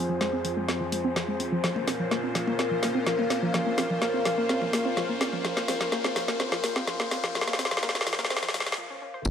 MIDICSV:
0, 0, Header, 1, 8, 480
1, 0, Start_track
1, 0, Tempo, 476190
1, 1650, Time_signature, 4, 2, 24, 8
1, 9381, End_track
2, 0, Start_track
2, 0, Title_t, "Ambient pad"
2, 0, Program_c, 0, 92
2, 0, Note_on_c, 0, 65, 79
2, 0, Note_on_c, 0, 72, 90
2, 0, Note_on_c, 0, 80, 79
2, 1650, Note_off_c, 0, 72, 0
2, 1650, Note_on_c, 0, 70, 85
2, 1929, Note_on_c, 0, 77, 73
2, 2557, Note_off_c, 0, 65, 0
2, 2894, Note_off_c, 0, 80, 0
2, 6409, Note_on_c, 0, 84, 74
2, 8849, Note_off_c, 0, 84, 0
2, 8850, Note_off_c, 0, 70, 0
2, 8850, Note_off_c, 0, 77, 0
2, 9329, Note_on_c, 0, 65, 81
2, 9381, Note_off_c, 0, 65, 0
2, 9381, End_track
3, 0, Start_track
3, 0, Title_t, "Analog synth pad"
3, 0, Program_c, 1, 89
3, 0, Note_on_c, 1, 41, 78
3, 0, Note_on_c, 1, 53, 71
3, 0, Note_on_c, 1, 60, 72
3, 0, Note_on_c, 1, 68, 73
3, 0, Note_on_c, 1, 72, 85
3, 1609, Note_off_c, 1, 41, 0
3, 1609, Note_off_c, 1, 53, 0
3, 1609, Note_off_c, 1, 60, 0
3, 1609, Note_off_c, 1, 68, 0
3, 1609, Note_off_c, 1, 72, 0
3, 1649, Note_on_c, 1, 65, 73
3, 1650, Note_on_c, 1, 46, 79
3, 1650, Note_on_c, 1, 58, 71
3, 1650, Note_on_c, 1, 61, 70
3, 1650, Note_on_c, 1, 72, 88
3, 8810, Note_off_c, 1, 46, 0
3, 8810, Note_off_c, 1, 58, 0
3, 8810, Note_off_c, 1, 61, 0
3, 8810, Note_off_c, 1, 65, 0
3, 8810, Note_off_c, 1, 72, 0
3, 9330, Note_on_c, 1, 60, 79
3, 9330, Note_on_c, 1, 65, 72
3, 9381, Note_off_c, 1, 60, 0
3, 9381, Note_off_c, 1, 65, 0
3, 9381, End_track
4, 0, Start_track
4, 0, Title_t, "Synth arpeggio sound"
4, 0, Program_c, 2, 84
4, 94, Note_on_c, 2, 53, 77
4, 157, Note_off_c, 2, 53, 0
4, 210, Note_on_c, 2, 56, 103
4, 276, Note_off_c, 2, 56, 0
4, 333, Note_on_c, 2, 60, 79
4, 396, Note_off_c, 2, 60, 0
4, 450, Note_on_c, 2, 53, 78
4, 550, Note_off_c, 2, 53, 0
4, 574, Note_on_c, 2, 56, 98
4, 637, Note_off_c, 2, 56, 0
4, 690, Note_on_c, 2, 60, 83
4, 790, Note_off_c, 2, 60, 0
4, 814, Note_on_c, 2, 53, 103
4, 852, Note_off_c, 2, 53, 0
4, 930, Note_on_c, 2, 56, 77
4, 1030, Note_off_c, 2, 56, 0
4, 1053, Note_on_c, 2, 60, 102
4, 1091, Note_off_c, 2, 60, 0
4, 1170, Note_on_c, 2, 53, 100
4, 1237, Note_off_c, 2, 53, 0
4, 1293, Note_on_c, 2, 56, 76
4, 1356, Note_off_c, 2, 56, 0
4, 1410, Note_on_c, 2, 60, 76
4, 1477, Note_off_c, 2, 60, 0
4, 1533, Note_on_c, 2, 53, 106
4, 1596, Note_off_c, 2, 53, 0
4, 1650, Note_on_c, 2, 53, 86
4, 1750, Note_off_c, 2, 53, 0
4, 1773, Note_on_c, 2, 58, 79
4, 1836, Note_off_c, 2, 58, 0
4, 1889, Note_on_c, 2, 60, 100
4, 1930, Note_off_c, 2, 60, 0
4, 2013, Note_on_c, 2, 53, 77
4, 2076, Note_off_c, 2, 53, 0
4, 2129, Note_on_c, 2, 58, 102
4, 2196, Note_off_c, 2, 58, 0
4, 2253, Note_on_c, 2, 60, 78
4, 2316, Note_off_c, 2, 60, 0
4, 2369, Note_on_c, 2, 53, 79
4, 2470, Note_off_c, 2, 53, 0
4, 2493, Note_on_c, 2, 58, 98
4, 2556, Note_off_c, 2, 58, 0
4, 2609, Note_on_c, 2, 60, 82
4, 2709, Note_off_c, 2, 60, 0
4, 2733, Note_on_c, 2, 53, 101
4, 2771, Note_off_c, 2, 53, 0
4, 2850, Note_on_c, 2, 58, 75
4, 2950, Note_off_c, 2, 58, 0
4, 2973, Note_on_c, 2, 60, 101
4, 3011, Note_off_c, 2, 60, 0
4, 3090, Note_on_c, 2, 53, 101
4, 3157, Note_off_c, 2, 53, 0
4, 3213, Note_on_c, 2, 58, 79
4, 3276, Note_off_c, 2, 58, 0
4, 3330, Note_on_c, 2, 60, 79
4, 3397, Note_off_c, 2, 60, 0
4, 3454, Note_on_c, 2, 53, 107
4, 3516, Note_off_c, 2, 53, 0
4, 3570, Note_on_c, 2, 53, 84
4, 3670, Note_off_c, 2, 53, 0
4, 3694, Note_on_c, 2, 58, 79
4, 3757, Note_off_c, 2, 58, 0
4, 3809, Note_on_c, 2, 60, 104
4, 3850, Note_off_c, 2, 60, 0
4, 3933, Note_on_c, 2, 53, 76
4, 3996, Note_off_c, 2, 53, 0
4, 4050, Note_on_c, 2, 58, 101
4, 4117, Note_off_c, 2, 58, 0
4, 4173, Note_on_c, 2, 60, 81
4, 4236, Note_off_c, 2, 60, 0
4, 4290, Note_on_c, 2, 53, 75
4, 4390, Note_off_c, 2, 53, 0
4, 4413, Note_on_c, 2, 58, 100
4, 4476, Note_off_c, 2, 58, 0
4, 4530, Note_on_c, 2, 60, 86
4, 4630, Note_off_c, 2, 60, 0
4, 4652, Note_on_c, 2, 53, 102
4, 4691, Note_off_c, 2, 53, 0
4, 4769, Note_on_c, 2, 58, 76
4, 4869, Note_off_c, 2, 58, 0
4, 4893, Note_on_c, 2, 60, 105
4, 4931, Note_off_c, 2, 60, 0
4, 5009, Note_on_c, 2, 53, 101
4, 5076, Note_off_c, 2, 53, 0
4, 5133, Note_on_c, 2, 58, 78
4, 5196, Note_off_c, 2, 58, 0
4, 5249, Note_on_c, 2, 60, 78
4, 5316, Note_off_c, 2, 60, 0
4, 5373, Note_on_c, 2, 53, 104
4, 5436, Note_off_c, 2, 53, 0
4, 5489, Note_on_c, 2, 53, 84
4, 5589, Note_off_c, 2, 53, 0
4, 5613, Note_on_c, 2, 58, 79
4, 5676, Note_off_c, 2, 58, 0
4, 5728, Note_on_c, 2, 60, 106
4, 5769, Note_off_c, 2, 60, 0
4, 5852, Note_on_c, 2, 53, 78
4, 5915, Note_off_c, 2, 53, 0
4, 5969, Note_on_c, 2, 58, 102
4, 6036, Note_off_c, 2, 58, 0
4, 6093, Note_on_c, 2, 60, 80
4, 6156, Note_off_c, 2, 60, 0
4, 6209, Note_on_c, 2, 53, 78
4, 6309, Note_off_c, 2, 53, 0
4, 6332, Note_on_c, 2, 58, 101
4, 6396, Note_off_c, 2, 58, 0
4, 6449, Note_on_c, 2, 60, 84
4, 6549, Note_off_c, 2, 60, 0
4, 6572, Note_on_c, 2, 53, 104
4, 6611, Note_off_c, 2, 53, 0
4, 6690, Note_on_c, 2, 58, 75
4, 6790, Note_off_c, 2, 58, 0
4, 6813, Note_on_c, 2, 60, 102
4, 6851, Note_off_c, 2, 60, 0
4, 6929, Note_on_c, 2, 53, 103
4, 6996, Note_off_c, 2, 53, 0
4, 7053, Note_on_c, 2, 58, 81
4, 7116, Note_off_c, 2, 58, 0
4, 7170, Note_on_c, 2, 60, 77
4, 7237, Note_off_c, 2, 60, 0
4, 7293, Note_on_c, 2, 53, 104
4, 7356, Note_off_c, 2, 53, 0
4, 7409, Note_on_c, 2, 53, 84
4, 7509, Note_off_c, 2, 53, 0
4, 7532, Note_on_c, 2, 58, 80
4, 7596, Note_off_c, 2, 58, 0
4, 7648, Note_on_c, 2, 60, 105
4, 7689, Note_off_c, 2, 60, 0
4, 7772, Note_on_c, 2, 53, 78
4, 7836, Note_off_c, 2, 53, 0
4, 7889, Note_on_c, 2, 58, 104
4, 7956, Note_off_c, 2, 58, 0
4, 8012, Note_on_c, 2, 60, 79
4, 8076, Note_off_c, 2, 60, 0
4, 8129, Note_on_c, 2, 53, 78
4, 8229, Note_off_c, 2, 53, 0
4, 8253, Note_on_c, 2, 58, 100
4, 8316, Note_off_c, 2, 58, 0
4, 8369, Note_on_c, 2, 60, 87
4, 8470, Note_off_c, 2, 60, 0
4, 8493, Note_on_c, 2, 53, 105
4, 8531, Note_off_c, 2, 53, 0
4, 8610, Note_on_c, 2, 53, 99
4, 8710, Note_off_c, 2, 53, 0
4, 8733, Note_on_c, 2, 53, 78
4, 8796, Note_off_c, 2, 53, 0
4, 8850, Note_on_c, 2, 53, 100
4, 8950, Note_off_c, 2, 53, 0
4, 8974, Note_on_c, 2, 61, 78
4, 9068, Note_off_c, 2, 61, 0
4, 9090, Note_on_c, 2, 61, 79
4, 9130, Note_off_c, 2, 61, 0
4, 9214, Note_on_c, 2, 72, 80
4, 9251, Note_off_c, 2, 72, 0
4, 9330, Note_on_c, 2, 53, 83
4, 9381, Note_off_c, 2, 53, 0
4, 9381, End_track
5, 0, Start_track
5, 0, Title_t, "Detuned saw bass"
5, 0, Program_c, 3, 39
5, 9330, Note_on_c, 3, 29, 103
5, 9381, Note_off_c, 3, 29, 0
5, 9381, End_track
6, 0, Start_track
6, 0, Title_t, "Riser"
6, 0, Program_c, 4, 103
6, 0, Note_on_c, 4, 60, 78
6, 8850, Note_off_c, 4, 60, 0
6, 9381, End_track
7, 0, Start_track
7, 0, Title_t, "Sub drop"
7, 0, Program_c, 5, 103
7, 9330, Note_on_c, 5, 60, 78
7, 9381, Note_off_c, 5, 60, 0
7, 9381, End_track
8, 0, Start_track
8, 0, Title_t, "Drums"
8, 210, Note_on_c, 9, 38, 67
8, 311, Note_off_c, 9, 38, 0
8, 451, Note_on_c, 9, 46, 109
8, 551, Note_off_c, 9, 46, 0
8, 691, Note_on_c, 9, 38, 69
8, 792, Note_off_c, 9, 38, 0
8, 931, Note_on_c, 9, 46, 108
8, 1032, Note_off_c, 9, 46, 0
8, 1171, Note_on_c, 9, 38, 73
8, 1271, Note_off_c, 9, 38, 0
8, 1410, Note_on_c, 9, 46, 107
8, 1511, Note_off_c, 9, 46, 0
8, 1650, Note_on_c, 9, 38, 72
8, 1751, Note_off_c, 9, 38, 0
8, 1774, Note_on_c, 9, 45, 90
8, 1874, Note_off_c, 9, 45, 0
8, 1890, Note_on_c, 9, 38, 78
8, 1890, Note_on_c, 9, 46, 105
8, 1991, Note_off_c, 9, 38, 0
8, 1991, Note_off_c, 9, 46, 0
8, 2131, Note_on_c, 9, 38, 75
8, 2131, Note_on_c, 9, 45, 89
8, 2232, Note_off_c, 9, 38, 0
8, 2232, Note_off_c, 9, 45, 0
8, 2371, Note_on_c, 9, 38, 76
8, 2371, Note_on_c, 9, 46, 104
8, 2471, Note_off_c, 9, 38, 0
8, 2471, Note_off_c, 9, 46, 0
8, 2495, Note_on_c, 9, 45, 93
8, 2596, Note_off_c, 9, 45, 0
8, 2611, Note_on_c, 9, 38, 78
8, 2712, Note_off_c, 9, 38, 0
8, 2851, Note_on_c, 9, 38, 80
8, 2851, Note_on_c, 9, 45, 94
8, 2851, Note_on_c, 9, 46, 105
8, 2951, Note_off_c, 9, 38, 0
8, 2951, Note_off_c, 9, 45, 0
8, 2951, Note_off_c, 9, 46, 0
8, 3090, Note_on_c, 9, 38, 84
8, 3191, Note_off_c, 9, 38, 0
8, 3214, Note_on_c, 9, 45, 93
8, 3314, Note_off_c, 9, 45, 0
8, 3330, Note_on_c, 9, 38, 82
8, 3330, Note_on_c, 9, 46, 106
8, 3431, Note_off_c, 9, 38, 0
8, 3431, Note_off_c, 9, 46, 0
8, 3570, Note_on_c, 9, 38, 81
8, 3570, Note_on_c, 9, 45, 98
8, 3671, Note_off_c, 9, 38, 0
8, 3671, Note_off_c, 9, 45, 0
8, 3810, Note_on_c, 9, 38, 86
8, 3810, Note_on_c, 9, 46, 103
8, 3911, Note_off_c, 9, 38, 0
8, 3911, Note_off_c, 9, 46, 0
8, 3933, Note_on_c, 9, 45, 97
8, 4034, Note_off_c, 9, 45, 0
8, 4049, Note_on_c, 9, 38, 83
8, 4150, Note_off_c, 9, 38, 0
8, 4289, Note_on_c, 9, 38, 87
8, 4289, Note_on_c, 9, 45, 94
8, 4289, Note_on_c, 9, 46, 105
8, 4390, Note_off_c, 9, 38, 0
8, 4390, Note_off_c, 9, 45, 0
8, 4390, Note_off_c, 9, 46, 0
8, 4529, Note_on_c, 9, 38, 87
8, 4630, Note_off_c, 9, 38, 0
8, 4653, Note_on_c, 9, 45, 98
8, 4754, Note_off_c, 9, 45, 0
8, 4770, Note_on_c, 9, 38, 90
8, 4770, Note_on_c, 9, 46, 104
8, 4871, Note_off_c, 9, 38, 0
8, 4871, Note_off_c, 9, 46, 0
8, 5010, Note_on_c, 9, 38, 91
8, 5010, Note_on_c, 9, 45, 98
8, 5111, Note_off_c, 9, 38, 0
8, 5111, Note_off_c, 9, 45, 0
8, 5250, Note_on_c, 9, 38, 93
8, 5250, Note_on_c, 9, 46, 104
8, 5351, Note_off_c, 9, 38, 0
8, 5351, Note_off_c, 9, 46, 0
8, 5373, Note_on_c, 9, 45, 97
8, 5474, Note_off_c, 9, 45, 0
8, 5490, Note_on_c, 9, 38, 91
8, 5591, Note_off_c, 9, 38, 0
8, 5614, Note_on_c, 9, 38, 80
8, 5714, Note_off_c, 9, 38, 0
8, 5729, Note_on_c, 9, 38, 94
8, 5729, Note_on_c, 9, 45, 101
8, 5729, Note_on_c, 9, 46, 105
8, 5830, Note_off_c, 9, 38, 0
8, 5830, Note_off_c, 9, 45, 0
8, 5830, Note_off_c, 9, 46, 0
8, 5854, Note_on_c, 9, 38, 83
8, 5954, Note_off_c, 9, 38, 0
8, 5970, Note_on_c, 9, 38, 91
8, 6071, Note_off_c, 9, 38, 0
8, 6094, Note_on_c, 9, 38, 87
8, 6094, Note_on_c, 9, 45, 102
8, 6195, Note_off_c, 9, 38, 0
8, 6195, Note_off_c, 9, 45, 0
8, 6210, Note_on_c, 9, 38, 97
8, 6210, Note_on_c, 9, 46, 102
8, 6311, Note_off_c, 9, 38, 0
8, 6311, Note_off_c, 9, 46, 0
8, 6333, Note_on_c, 9, 38, 84
8, 6434, Note_off_c, 9, 38, 0
8, 6450, Note_on_c, 9, 38, 96
8, 6450, Note_on_c, 9, 45, 100
8, 6551, Note_off_c, 9, 38, 0
8, 6551, Note_off_c, 9, 45, 0
8, 6573, Note_on_c, 9, 38, 87
8, 6674, Note_off_c, 9, 38, 0
8, 6689, Note_on_c, 9, 38, 101
8, 6689, Note_on_c, 9, 46, 101
8, 6790, Note_off_c, 9, 38, 0
8, 6790, Note_off_c, 9, 46, 0
8, 6813, Note_on_c, 9, 38, 90
8, 6813, Note_on_c, 9, 45, 99
8, 6914, Note_off_c, 9, 38, 0
8, 6914, Note_off_c, 9, 45, 0
8, 6930, Note_on_c, 9, 38, 103
8, 7030, Note_off_c, 9, 38, 0
8, 7053, Note_on_c, 9, 38, 90
8, 7154, Note_off_c, 9, 38, 0
8, 7170, Note_on_c, 9, 38, 101
8, 7170, Note_on_c, 9, 45, 98
8, 7170, Note_on_c, 9, 46, 102
8, 7271, Note_off_c, 9, 38, 0
8, 7271, Note_off_c, 9, 45, 0
8, 7271, Note_off_c, 9, 46, 0
8, 7294, Note_on_c, 9, 38, 93
8, 7395, Note_off_c, 9, 38, 0
8, 7411, Note_on_c, 9, 38, 100
8, 7473, Note_off_c, 9, 38, 0
8, 7473, Note_on_c, 9, 38, 91
8, 7535, Note_off_c, 9, 38, 0
8, 7535, Note_on_c, 9, 38, 88
8, 7535, Note_on_c, 9, 45, 96
8, 7593, Note_off_c, 9, 38, 0
8, 7593, Note_on_c, 9, 38, 86
8, 7635, Note_off_c, 9, 45, 0
8, 7650, Note_off_c, 9, 38, 0
8, 7650, Note_on_c, 9, 38, 105
8, 7650, Note_on_c, 9, 46, 106
8, 7712, Note_off_c, 9, 38, 0
8, 7712, Note_on_c, 9, 38, 95
8, 7751, Note_off_c, 9, 46, 0
8, 7774, Note_off_c, 9, 38, 0
8, 7774, Note_on_c, 9, 38, 95
8, 7832, Note_off_c, 9, 38, 0
8, 7832, Note_on_c, 9, 38, 92
8, 7890, Note_off_c, 9, 38, 0
8, 7890, Note_on_c, 9, 38, 104
8, 7890, Note_on_c, 9, 45, 98
8, 7952, Note_off_c, 9, 38, 0
8, 7952, Note_on_c, 9, 38, 89
8, 7991, Note_off_c, 9, 45, 0
8, 8014, Note_off_c, 9, 38, 0
8, 8014, Note_on_c, 9, 38, 95
8, 8072, Note_off_c, 9, 38, 0
8, 8072, Note_on_c, 9, 38, 97
8, 8130, Note_off_c, 9, 38, 0
8, 8130, Note_on_c, 9, 38, 107
8, 8130, Note_on_c, 9, 46, 104
8, 8192, Note_off_c, 9, 38, 0
8, 8192, Note_on_c, 9, 38, 93
8, 8231, Note_off_c, 9, 46, 0
8, 8254, Note_off_c, 9, 38, 0
8, 8254, Note_on_c, 9, 38, 95
8, 8254, Note_on_c, 9, 45, 96
8, 8311, Note_off_c, 9, 38, 0
8, 8311, Note_on_c, 9, 38, 96
8, 8355, Note_off_c, 9, 45, 0
8, 8370, Note_off_c, 9, 38, 0
8, 8370, Note_on_c, 9, 38, 107
8, 8432, Note_off_c, 9, 38, 0
8, 8432, Note_on_c, 9, 38, 93
8, 8494, Note_off_c, 9, 38, 0
8, 8494, Note_on_c, 9, 38, 99
8, 8552, Note_off_c, 9, 38, 0
8, 8552, Note_on_c, 9, 38, 97
8, 8610, Note_off_c, 9, 38, 0
8, 8610, Note_on_c, 9, 38, 108
8, 8610, Note_on_c, 9, 45, 99
8, 8610, Note_on_c, 9, 46, 105
8, 8672, Note_off_c, 9, 38, 0
8, 8672, Note_on_c, 9, 38, 95
8, 8711, Note_off_c, 9, 45, 0
8, 8711, Note_off_c, 9, 46, 0
8, 8733, Note_off_c, 9, 38, 0
8, 8733, Note_on_c, 9, 38, 95
8, 8792, Note_off_c, 9, 38, 0
8, 8792, Note_on_c, 9, 38, 100
8, 8893, Note_off_c, 9, 38, 0
8, 9323, Note_on_c, 9, 54, 50
8, 9330, Note_on_c, 9, 36, 123
8, 9330, Note_on_c, 9, 49, 104
8, 9381, Note_off_c, 9, 36, 0
8, 9381, Note_off_c, 9, 49, 0
8, 9381, Note_off_c, 9, 54, 0
8, 9381, End_track
0, 0, End_of_file